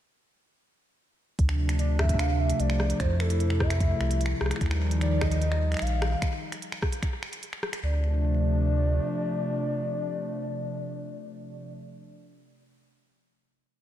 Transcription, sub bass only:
0, 0, Header, 1, 2, 480
1, 0, Start_track
1, 0, Key_signature, -1, "minor"
1, 0, Tempo, 402685
1, 1656, Time_signature, 4, 2, 24, 8
1, 16466, End_track
2, 0, Start_track
2, 0, Title_t, "Sub bass"
2, 0, Program_c, 0, 38
2, 1655, Note_on_c, 0, 38, 97
2, 3018, Note_off_c, 0, 38, 0
2, 3095, Note_on_c, 0, 36, 90
2, 3498, Note_off_c, 0, 36, 0
2, 3575, Note_on_c, 0, 41, 100
2, 4699, Note_off_c, 0, 41, 0
2, 4775, Note_on_c, 0, 36, 87
2, 5179, Note_off_c, 0, 36, 0
2, 5256, Note_on_c, 0, 36, 87
2, 5400, Note_off_c, 0, 36, 0
2, 5495, Note_on_c, 0, 39, 95
2, 6859, Note_off_c, 0, 39, 0
2, 6935, Note_on_c, 0, 34, 94
2, 7338, Note_off_c, 0, 34, 0
2, 9335, Note_on_c, 0, 38, 101
2, 10728, Note_off_c, 0, 38, 0
2, 16466, End_track
0, 0, End_of_file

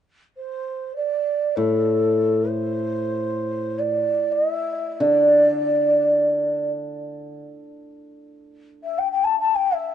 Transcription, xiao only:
0, 0, Header, 1, 2, 480
1, 0, Start_track
1, 0, Tempo, 500000
1, 9548, End_track
2, 0, Start_track
2, 0, Title_t, "Xiao"
2, 0, Program_c, 0, 77
2, 356, Note_on_c, 0, 72, 59
2, 892, Note_off_c, 0, 72, 0
2, 922, Note_on_c, 0, 74, 62
2, 1498, Note_on_c, 0, 69, 61
2, 1512, Note_off_c, 0, 74, 0
2, 2387, Note_on_c, 0, 72, 67
2, 2401, Note_off_c, 0, 69, 0
2, 3639, Note_on_c, 0, 74, 64
2, 3653, Note_off_c, 0, 72, 0
2, 4146, Note_on_c, 0, 75, 78
2, 4160, Note_off_c, 0, 74, 0
2, 4328, Note_off_c, 0, 75, 0
2, 4328, Note_on_c, 0, 76, 78
2, 4812, Note_on_c, 0, 74, 76
2, 4827, Note_off_c, 0, 76, 0
2, 6444, Note_off_c, 0, 74, 0
2, 8483, Note_on_c, 0, 76, 64
2, 8625, Note_on_c, 0, 79, 67
2, 8640, Note_off_c, 0, 76, 0
2, 8747, Note_off_c, 0, 79, 0
2, 8753, Note_on_c, 0, 79, 68
2, 8873, Note_on_c, 0, 81, 70
2, 8887, Note_off_c, 0, 79, 0
2, 9016, Note_off_c, 0, 81, 0
2, 9022, Note_on_c, 0, 81, 72
2, 9170, Note_on_c, 0, 79, 75
2, 9185, Note_off_c, 0, 81, 0
2, 9353, Note_on_c, 0, 76, 66
2, 9367, Note_off_c, 0, 79, 0
2, 9548, Note_off_c, 0, 76, 0
2, 9548, End_track
0, 0, End_of_file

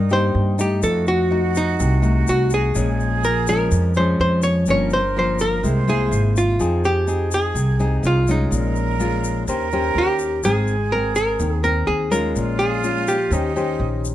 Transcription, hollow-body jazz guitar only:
0, 0, Header, 1, 2, 480
1, 0, Start_track
1, 0, Tempo, 480000
1, 834, Time_signature, 4, 2, 24, 8
1, 14148, End_track
2, 0, Start_track
2, 0, Title_t, "Hollow-body jazz guitar"
2, 0, Program_c, 0, 26
2, 0, Note_on_c, 0, 70, 90
2, 124, Note_off_c, 0, 70, 0
2, 128, Note_on_c, 0, 72, 89
2, 607, Note_on_c, 0, 67, 78
2, 615, Note_off_c, 0, 72, 0
2, 824, Note_off_c, 0, 67, 0
2, 836, Note_on_c, 0, 69, 93
2, 1077, Note_off_c, 0, 69, 0
2, 1081, Note_on_c, 0, 66, 100
2, 1571, Note_off_c, 0, 66, 0
2, 1572, Note_on_c, 0, 63, 90
2, 2293, Note_on_c, 0, 66, 88
2, 2304, Note_off_c, 0, 63, 0
2, 2530, Note_off_c, 0, 66, 0
2, 2540, Note_on_c, 0, 68, 97
2, 3247, Note_on_c, 0, 70, 88
2, 3268, Note_off_c, 0, 68, 0
2, 3479, Note_off_c, 0, 70, 0
2, 3491, Note_on_c, 0, 70, 94
2, 3966, Note_off_c, 0, 70, 0
2, 3970, Note_on_c, 0, 72, 87
2, 4195, Note_off_c, 0, 72, 0
2, 4207, Note_on_c, 0, 72, 96
2, 4430, Note_off_c, 0, 72, 0
2, 4434, Note_on_c, 0, 73, 99
2, 4680, Note_off_c, 0, 73, 0
2, 4704, Note_on_c, 0, 73, 96
2, 4930, Note_off_c, 0, 73, 0
2, 4934, Note_on_c, 0, 72, 103
2, 5170, Note_off_c, 0, 72, 0
2, 5187, Note_on_c, 0, 72, 86
2, 5408, Note_off_c, 0, 72, 0
2, 5412, Note_on_c, 0, 70, 98
2, 5896, Note_off_c, 0, 70, 0
2, 5896, Note_on_c, 0, 68, 85
2, 6373, Note_off_c, 0, 68, 0
2, 6377, Note_on_c, 0, 65, 89
2, 6849, Note_off_c, 0, 65, 0
2, 6853, Note_on_c, 0, 67, 98
2, 7290, Note_off_c, 0, 67, 0
2, 7342, Note_on_c, 0, 68, 95
2, 7852, Note_off_c, 0, 68, 0
2, 7852, Note_on_c, 0, 67, 95
2, 8062, Note_off_c, 0, 67, 0
2, 8066, Note_on_c, 0, 65, 93
2, 8296, Note_off_c, 0, 65, 0
2, 8310, Note_on_c, 0, 63, 77
2, 9691, Note_off_c, 0, 63, 0
2, 9982, Note_on_c, 0, 67, 90
2, 10445, Note_off_c, 0, 67, 0
2, 10449, Note_on_c, 0, 68, 101
2, 10922, Note_on_c, 0, 70, 90
2, 10935, Note_off_c, 0, 68, 0
2, 11148, Note_off_c, 0, 70, 0
2, 11160, Note_on_c, 0, 70, 99
2, 11626, Note_off_c, 0, 70, 0
2, 11638, Note_on_c, 0, 70, 87
2, 11871, Note_on_c, 0, 68, 98
2, 11882, Note_off_c, 0, 70, 0
2, 12116, Note_on_c, 0, 70, 95
2, 12118, Note_off_c, 0, 68, 0
2, 12561, Note_off_c, 0, 70, 0
2, 12589, Note_on_c, 0, 68, 94
2, 13079, Note_off_c, 0, 68, 0
2, 13083, Note_on_c, 0, 67, 79
2, 13997, Note_off_c, 0, 67, 0
2, 14148, End_track
0, 0, End_of_file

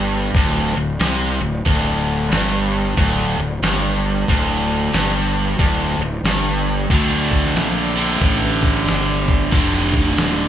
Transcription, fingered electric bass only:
0, 0, Header, 1, 2, 480
1, 0, Start_track
1, 0, Key_signature, -1, "minor"
1, 0, Tempo, 655022
1, 1219, Time_signature, 4, 2, 24, 8
1, 7681, End_track
2, 0, Start_track
2, 0, Title_t, "Fingered electric bass"
2, 0, Program_c, 0, 33
2, 0, Note_on_c, 0, 31, 82
2, 226, Note_off_c, 0, 31, 0
2, 251, Note_on_c, 0, 26, 89
2, 535, Note_off_c, 0, 26, 0
2, 556, Note_on_c, 0, 26, 75
2, 723, Note_off_c, 0, 26, 0
2, 737, Note_on_c, 0, 36, 87
2, 1019, Note_off_c, 0, 36, 0
2, 1042, Note_on_c, 0, 26, 80
2, 1207, Note_off_c, 0, 26, 0
2, 1216, Note_on_c, 0, 26, 82
2, 1669, Note_off_c, 0, 26, 0
2, 1701, Note_on_c, 0, 31, 89
2, 2152, Note_off_c, 0, 31, 0
2, 2179, Note_on_c, 0, 26, 90
2, 2461, Note_off_c, 0, 26, 0
2, 2481, Note_on_c, 0, 26, 83
2, 2647, Note_off_c, 0, 26, 0
2, 2654, Note_on_c, 0, 31, 86
2, 3109, Note_off_c, 0, 31, 0
2, 3139, Note_on_c, 0, 26, 76
2, 3591, Note_off_c, 0, 26, 0
2, 3616, Note_on_c, 0, 31, 87
2, 4070, Note_off_c, 0, 31, 0
2, 4099, Note_on_c, 0, 26, 85
2, 4381, Note_off_c, 0, 26, 0
2, 4393, Note_on_c, 0, 26, 85
2, 4563, Note_off_c, 0, 26, 0
2, 4568, Note_on_c, 0, 31, 85
2, 5025, Note_off_c, 0, 31, 0
2, 5051, Note_on_c, 0, 38, 73
2, 5522, Note_off_c, 0, 38, 0
2, 5531, Note_on_c, 0, 34, 83
2, 6001, Note_off_c, 0, 34, 0
2, 6019, Note_on_c, 0, 33, 77
2, 6485, Note_off_c, 0, 33, 0
2, 6493, Note_on_c, 0, 31, 90
2, 6961, Note_off_c, 0, 31, 0
2, 6977, Note_on_c, 0, 29, 80
2, 7443, Note_off_c, 0, 29, 0
2, 7458, Note_on_c, 0, 27, 88
2, 7681, Note_off_c, 0, 27, 0
2, 7681, End_track
0, 0, End_of_file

